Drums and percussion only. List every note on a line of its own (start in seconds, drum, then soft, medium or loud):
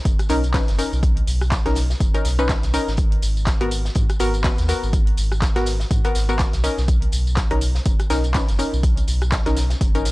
0.05 kick loud
0.05 closed hi-hat loud
0.05 closed hi-hat medium
0.05 tambourine soft
0.19 cross-stick medium
0.19 closed hi-hat medium
0.19 tambourine soft
0.29 closed hi-hat medium
0.29 open hi-hat loud
0.29 tambourine medium
0.44 closed hi-hat soft
0.44 tambourine soft
0.54 kick loud
0.54 snare loud
0.54 clap loud
0.54 closed hi-hat medium
0.54 open hi-hat medium
0.54 tambourine soft
0.68 snare soft
0.68 closed hi-hat medium
0.68 tambourine soft
0.79 closed hi-hat medium
0.79 open hi-hat loud
0.79 tambourine medium
0.93 tambourine soft
1.03 kick loud
1.03 closed hi-hat medium
1.03 tambourine soft
1.17 closed hi-hat soft
1.27 closed hi-hat medium
1.27 open hi-hat loud
1.27 tambourine medium
1.41 cross-stick medium
1.41 tambourine soft
1.52 kick loud
1.52 snare loud
1.52 clap loud
1.52 closed hi-hat medium
1.52 tambourine soft
1.66 cross-stick medium
1.66 snare soft
1.66 closed hi-hat medium
1.75 snare medium
1.75 closed hi-hat medium
1.75 open hi-hat loud
1.75 tambourine medium
1.90 snare medium
1.90 tambourine soft
2.00 kick loud
2.00 closed hi-hat medium
2.00 tambourine soft
2.14 closed hi-hat soft
2.14 tambourine soft
2.24 snare soft
2.24 closed hi-hat medium
2.24 open hi-hat loud
2.24 tambourine medium
2.39 closed hi-hat soft
2.39 tambourine soft
2.49 kick loud
2.49 snare loud
2.49 clap loud
2.49 closed hi-hat medium
2.49 tambourine soft
2.63 snare soft
2.63 closed hi-hat medium
2.63 tambourine soft
2.74 closed hi-hat medium
2.74 open hi-hat loud
2.74 tambourine medium
2.88 snare soft
2.88 tambourine soft
2.97 kick loud
2.97 closed hi-hat medium
2.97 tambourine soft
3.12 closed hi-hat medium
3.22 closed hi-hat medium
3.22 open hi-hat loud
3.22 tambourine medium
3.37 tambourine soft
3.46 kick loud
3.46 snare loud
3.46 clap loud
3.46 closed hi-hat medium
3.46 tambourine soft
3.61 cross-stick medium
3.61 closed hi-hat medium
3.71 closed hi-hat medium
3.71 open hi-hat loud
3.71 tambourine medium
3.85 snare soft
3.85 tambourine soft
3.95 kick loud
3.95 closed hi-hat loud
3.95 closed hi-hat medium
3.95 tambourine soft
4.10 cross-stick medium
4.10 closed hi-hat medium
4.10 tambourine soft
4.19 closed hi-hat medium
4.19 open hi-hat loud
4.19 tambourine medium
4.34 closed hi-hat soft
4.34 tambourine soft
4.44 kick loud
4.44 snare loud
4.44 clap loud
4.44 closed hi-hat medium
4.44 open hi-hat medium
4.44 tambourine soft
4.58 snare soft
4.58 closed hi-hat medium
4.58 tambourine soft
4.69 closed hi-hat medium
4.69 open hi-hat loud
4.69 tambourine medium
4.83 tambourine soft
4.93 kick loud
4.93 closed hi-hat medium
4.93 tambourine soft
5.07 closed hi-hat soft
5.17 closed hi-hat medium
5.17 open hi-hat loud
5.17 tambourine medium
5.32 cross-stick medium
5.32 tambourine soft
5.42 kick loud
5.42 snare loud
5.42 clap loud
5.42 closed hi-hat medium
5.42 tambourine soft
5.55 cross-stick medium
5.55 snare soft
5.55 closed hi-hat medium
5.66 snare medium
5.66 closed hi-hat medium
5.66 open hi-hat loud
5.66 tambourine medium
5.80 snare medium
5.80 tambourine soft
5.91 kick loud
5.91 closed hi-hat medium
5.91 tambourine soft
6.05 closed hi-hat medium
6.05 tambourine soft
6.15 snare medium
6.15 closed hi-hat medium
6.15 open hi-hat loud
6.15 tambourine medium
6.29 closed hi-hat soft
6.29 tambourine soft
6.39 kick loud
6.39 snare loud
6.39 clap loud
6.39 closed hi-hat medium
6.39 tambourine soft
6.53 snare medium
6.53 closed hi-hat medium
6.53 tambourine soft
6.64 closed hi-hat medium
6.64 open hi-hat loud
6.64 tambourine medium
6.78 snare soft
6.78 tambourine soft
6.88 kick loud
6.88 closed hi-hat medium
6.88 tambourine soft
7.02 closed hi-hat medium
7.12 closed hi-hat medium
7.12 open hi-hat loud
7.12 tambourine medium
7.27 tambourine soft
7.36 kick loud
7.36 snare loud
7.36 clap loud
7.36 closed hi-hat medium
7.36 tambourine soft
7.51 cross-stick medium
7.51 closed hi-hat medium
7.61 closed hi-hat medium
7.61 open hi-hat loud
7.61 tambourine medium
7.75 snare medium
7.75 tambourine soft
7.86 kick loud
7.86 closed hi-hat medium
7.86 tambourine soft
8.00 cross-stick medium
8.00 closed hi-hat medium
8.00 tambourine soft
8.10 snare loud
8.10 closed hi-hat medium
8.10 open hi-hat loud
8.10 tambourine medium
8.24 closed hi-hat soft
8.24 tambourine soft
8.34 kick loud
8.34 snare loud
8.34 clap loud
8.34 closed hi-hat medium
8.34 open hi-hat medium
8.34 tambourine soft
8.48 snare soft
8.48 closed hi-hat medium
8.48 tambourine soft
8.59 closed hi-hat medium
8.59 open hi-hat loud
8.59 tambourine medium
8.73 tambourine soft
8.83 kick loud
8.83 closed hi-hat medium
8.83 tambourine soft
8.97 closed hi-hat medium
8.97 tambourine soft
9.07 closed hi-hat medium
9.07 open hi-hat loud
9.07 tambourine medium
9.22 cross-stick medium
9.22 closed hi-hat soft
9.22 tambourine soft
9.32 kick loud
9.32 snare loud
9.32 clap loud
9.32 closed hi-hat medium
9.32 tambourine soft
9.45 cross-stick medium
9.45 snare soft
9.45 closed hi-hat medium
9.45 tambourine soft
9.57 snare medium
9.57 closed hi-hat medium
9.57 open hi-hat loud
9.57 tambourine medium
9.70 snare medium
9.70 closed hi-hat soft
9.70 tambourine soft
9.81 kick loud
9.81 closed hi-hat medium
9.81 tambourine soft
9.95 closed hi-hat medium
9.95 tambourine soft
10.05 snare soft
10.05 closed hi-hat medium
10.05 open hi-hat loud
10.05 tambourine medium